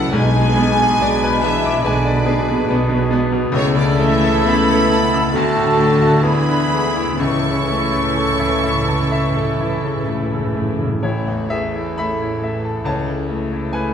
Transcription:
Already playing: C#2 C#3 E3 F#3 A3 E4 A4 E5 F#5 A5
0.10 B1 B2 G#3 D4 B4 G#5
0.36 B2
0.55 G#3 B3 D4 B4
0.82 G#4
0.99 B1 B2 G#3 D4 B4 D5
1.23 B4
1.41 E3 G#3 D4 B4 E5 G#5
1.65 D6
1.83 B1 B2 D3 G#3 D4 B4 D5 G#5
2.05 D5
2.25 G#3 D4 G#4 B4
2.48 B2
2.68 B1 B2 G#3 B3 D4 B4
2.89 B2
3.11 G#3 B3 D4 B4
3.32 B2
3.52 C#2 C#3 A3 E4 A4 C#5
3.75 C#3 D3 D5
3.80 D5
3.99 E3 A3 E5
4.23 A4
4.45 B3 E5 B5
4.50 B5
4.70 A4
4.92 A5
5.14 E6
5.32 D2 D3 A3 F#4 A4 A5
5.55 A2
5.77 A3
6.02 F#4
6.22 D2 E3 B3 E4 G#4 B5
6.49 D3
6.72 G#3
6.96 E4
7.15 C#2 A2 C#3 E3 C#4 E4 A4 C#6
7.19 C#2
7.25 A2
7.34 A2
7.42 A2 C#3
7.51 A2
7.67 A2 A3
7.76 A2
7.83 A2
7.90 A2 E4
7.98 A2
8.08 A2
8.15 A2 A4
8.24 A2
8.32 A2
8.40 A2 E4
8.50 A2
8.58 A2
8.63 A2 E5
8.74 A2
8.81 A2
8.89 A2 A5
8.99 A2
9.06 A2
9.12 A2 E5
9.23 A2
9.31 A2
9.35 A4
9.40 A2
9.49 A2
9.56 A2
9.61 A2 E4
9.72 A2
9.80 A2
9.84 C#3
9.89 A2
9.96 A2
10.05 A2 A3
10.12 A2
10.21 A2
10.29 A2 C#3
10.38 A2
10.46 A2
10.55 A2 A3
10.62 A2
10.70 A2
10.78 A2 C#3
10.87 A2
10.95 A2
11.02 A1 A2 A3 E4 C#5
11.28 E2
11.50 E3 A3 C#4 G#4 A4 E5
11.76 E4
11.98 A3 E4 A4 C#5 E5 B5
12.22 E4
12.42 E3 C#4 A4 E5
12.64 A5
12.85 C#2 C#3 A3 E4 C#5 A5
13.07 C#3
13.28 E3 A3 C#4 A4
13.53 E4
13.72 A3 E4 A4 B4 C#5 G#5

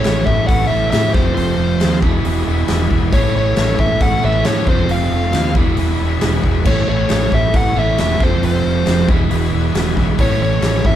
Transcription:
Already playing: A2 E3 A3 E4 A4 C#5
0.04 A1 E3 A3 C#4 E4, snare, clap, open hi-hat
0.26 A1 A2 E3 A3 C#4 E4 E5, kick
0.47 A1 E3 A3 C#4 E4 F#5, kick, open hi-hat
0.67 A1 A3 C#4 E4 E5
0.71 A2 E3
0.91 A2 E3 A3 C#4 E4 E5, snare, clap, open hi-hat
1.13 F1 F2 C3 F3 A3 C4 F4 A4 C5, kick, snare
1.35 F1 F3 A3 C4 F4 C5, open hi-hat
1.58 F1 A3 C4 F4
1.80 D#2 F3 A3 C4 F4, snare, clap, open hi-hat
2.02 E1 E2 B2 E3 G#3 B3 E4 G#4 B4, kick
2.24 E1 E3 G#3 B3 E4, open hi-hat
2.46 E1 E3 G#3 B3 E4
2.68 E1 E3 G#3 B3 E4, snare, clap, open hi-hat
2.91 E1 G#3 B3 E4, kick
3.12 A1 A2 E3 A3 C#4 E4 A4 C#5, kick, open hi-hat
3.35 A1 A3 C#4 E4 C#5
3.56 A1 E3 A3 C#4 E4, snare, clap, open hi-hat
3.79 A1 A2 E3 A3 C#4 E4 E5, kick
4.00 A1 E3 A3 C#4 E4 F#5, kick, open hi-hat
4.23 A1 A2 E3 A3 C#4 E4 E5
4.44 A2 E3 A3 C#4 E4 C#5, snare, clap, open hi-hat
4.66 F1 F2 C3 F3 A3 C4 F4 A4 C5, kick
4.89 F1 F3 A3 C4 F4 F5, open hi-hat
5.11 F1 A3 C4 F4
5.33 D#2 F3 A3 C4 F4, snare, clap, open hi-hat
5.54 E1 E2 B2 E3 G#3 B3 E4 G#4 B4, kick
5.77 E1 E3 G#3 B3 E4, open hi-hat
6.00 E1 E3 G#3 B3 E4
6.21 E1 E3 G#3 B3 E4, snare, clap, open hi-hat
6.43 E1 G#3 B3 E4, kick
6.65 A1 A2 E3 A3 C#4 E4 A4 C#5, kick, crash
6.88 A1 A3 C#4 E4 C#5
7.09 A1 E3 A3 C#4 E4, snare, clap, open hi-hat
7.32 A1 A2 E3 A3 C#4 E4 E5, kick
7.53 A1 E3 A3 C#4 E4 F#5, kick, open hi-hat
7.75 A1 A2 E3 A3 C#4 E4 E5
7.97 E1 A2 E3 A3 C#4 E4 E5, snare, clap, open hi-hat
8.20 F1 F2 C3 F3 A3 C4 F4 A4 C5, kick, snare
8.42 F1 F3 A3 C4 F4 C5, open hi-hat
8.64 F1 A3 C4 F4
8.86 F1 F3 A3 C4 F4, snare, clap, open hi-hat
9.08 E1 E2 B2 E3 G#3 B3 E4 G#4 B4, kick
9.30 E1 E3 G#3 B3 E4, open hi-hat
9.52 E1 E3 G#3 B3 E4
9.74 E1 E3 G#3 B3 E4, snare, clap, open hi-hat
9.96 B1 G#3 B3 E4, kick, snare
10.18 A1 A2 E3 A3 C#4 E4 A4 C#5, kick, open hi-hat
10.40 A1 A3 C#4 E4 C#5
10.62 A1 E3 A3 C#4 E4, snare, clap, open hi-hat
10.85 A1 A2 E3 A3 C#4 E4 E5, kick

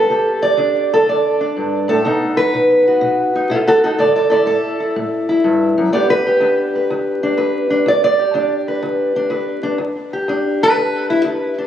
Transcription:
Already playing: B3 D4 A4
0.10 E2 G4
0.43 D5
0.57 E2 D4
0.94 A4
1.06 E2 D5
1.41 D4
1.57 G2
1.88 A2 A4
2.05 B2 B3 D#4
2.37 B4
2.54 B2
2.87 F#4
3.01 B2
3.35 D#4
3.50 B2 F#4 A4
3.67 F#4 A4
3.84 D#4 F#4 A4
3.99 A2 A4 D5
4.16 A4 D5
4.30 E4 A4 D5
4.46 A2 A4
4.80 E4
4.96 A2
5.29 E4
5.44 G2
5.78 F#2
5.93 E2 B3 D4 G4 D5
6.10 B4
6.27 G4
6.40 E2 D4
6.75 B4
6.90 E2
7.23 D4
7.37 E2 B4
7.70 D4
7.86 E2 D5
8.04 D5
8.19 G4
8.34 E2 D4
8.68 B4
8.83 E2
9.16 D4
9.30 E2 B4
9.63 D4
9.78 E2
10.13 G4
10.28 E2 D4
10.63 B4
10.77 E2
11.10 E4
11.24 E2 B4
11.58 D4

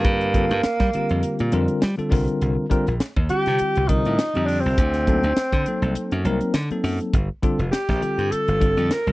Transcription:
Already playing: D3 G3 A#3 C4 F4 A4
0.04 G2, kick, closed hi-hat
0.21 closed hi-hat
0.33 D3 G3 C4 F4 A4, kick, closed hi-hat
0.49 G2 F4 A4, closed hi-hat
0.63 muted slap bass stroke, snare, closed hi-hat
0.80 G3, kick, snare, closed hi-hat
0.93 D3 G3 C4 F4 G4, muted slap bass stroke, closed hi-hat
1.09 F2, closed hi-hat
1.23 muted slap bass stroke, closed hi-hat
1.39 A#2, closed hi-hat
1.52 F2 D3 G3 C4 F4 A#4, closed hi-hat
1.68 muted slap bass stroke, closed hi-hat
1.81 G3 F4, snare, closed hi-hat
1.97 D3 G3 C4 F4 A4, muted slap bass stroke, closed hi-hat
2.09 C2 D3 G3 C4 F4 A#4, kick, open hi-hat
2.28 closed hi-hat
2.41 C2, closed hi-hat
2.70 D3 G3 C4 F4 A#4, muted slap bass stroke, kick, closed hi-hat
2.86 A#1 F4 A#4, closed hi-hat
3.00 snare, closed hi-hat
3.16 D#2, kick
3.29 D3 G3 C4 F4 G4, muted slap bass stroke, closed hi-hat
3.46 C3, snare, closed hi-hat
3.59 muted slap bass stroke, closed hi-hat
3.75 C2, closed hi-hat
3.88 D3 G3 C4 D#4 F4 A#4, kick, closed hi-hat
4.05 A2, closed hi-hat
4.18 F4 C5, snare, closed hi-hat
4.34 F2 D3 G3 C4 F4 G4, closed hi-hat
4.46 D4, open hi-hat
4.60 C4
4.66 C2
4.78 D2, kick, closed hi-hat
4.94 snare, closed hi-hat
5.07 F#3 A#3 C4 D#4 A4, kick, closed hi-hat
5.23 D2 D#4, closed hi-hat
5.37 snare, closed hi-hat
5.52 D3, kick, closed hi-hat
5.65 F#3 A#3 C4 D#4 A4, muted slap bass stroke, closed hi-hat
5.82 C2, closed hi-hat
5.95 muted slap bass stroke, closed hi-hat
6.11 F#2, closed hi-hat
6.25 C2 F#3 A#3 C4 D#4 A#4, closed hi-hat
6.41 muted slap bass stroke, closed hi-hat
6.54 D3 D#4 A4, snare, closed hi-hat
6.70 F#3 A#3 C4 D#4 A4, muted slap bass stroke, closed hi-hat
6.84 F#2, open hi-hat
7.01 closed hi-hat
7.14 G1, kick, closed hi-hat
7.43 D3 G3 C4 F4 A4, muted slap bass stroke, kick, closed hi-hat
7.58 F1 F4 A4, closed hi-hat
7.71 G4, snare, closed hi-hat
7.89 A#1, kick, snare
8.01 D3 G3 C4 F4 A4, muted slap bass stroke, closed hi-hat
8.18 G2, closed hi-hat
8.31 A4, muted slap bass stroke, closed hi-hat
8.48 G1, closed hi-hat
8.60 D3 G3 C4 F4 A4, kick, closed hi-hat
8.77 F2, closed hi-hat
8.91 F4 A#4 C5, snare, closed hi-hat
9.07 C2 D3 G3 C4 F4 A#4, closed hi-hat

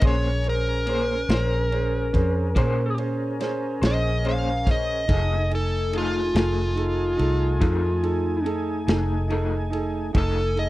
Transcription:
0.00 A#1 A#3 C#4 G#4 A#4 C5, kick, ride
0.04 C#5 C6
0.44 C#4 G#4 C5, ride
0.49 A#4
0.86 A#3 C#4 G#4 C5, ride
1.29 A#1 C#4 G#4 C5, snare, ride
1.72 C#4 G#4 C5, ride
2.13 F2 C#4 G#4 C5, kick, ride
2.55 A#2 A#3 C#4 G#4 C5, kick, ride
2.98 C#4 G#4 C5, ride
3.40 C#4 G#4 C5, snare, ride
3.82 A#1 C#4 G#4 C5, snare, ride
3.87 D#5
4.23 A#3 C#4 G#4 C5, ride
4.28 F5
4.65 C#4 G#4 C5, kick, snare, ride
4.71 D#5
5.08 F1 F3 A3 D#4 G#4 A4 G#5, kick, ride
5.50 D#4 A4 G#5, ride
5.55 A4
5.91 F3 A3 D#4 G#4 A4, ride
5.95 D#4 F4 G#4
6.33 F1 A3 D#4 G#4 A4, snare, ride
6.75 D#4 G#4 A4, ride
7.17 C2 D#4 G#4 A4, ride
7.59 F2 F3 A3 D#4 G#4 A4, kick, ride
8.02 D#4 G#4 A4, ride
8.44 D#4 G#4 A4, ride
8.87 F1 A3 D#4 G#4 A4, snare, ride
9.28 F3 A3 D#4 G#4 A4, ride
9.32 G#4
9.70 D#4 G#4 A4, ride
10.13 F1 F3 A3 D#4 G#4 A4 D#5 G#5, kick, ride
10.18 A4
10.55 D#4 G#4 A4 D#5, ride

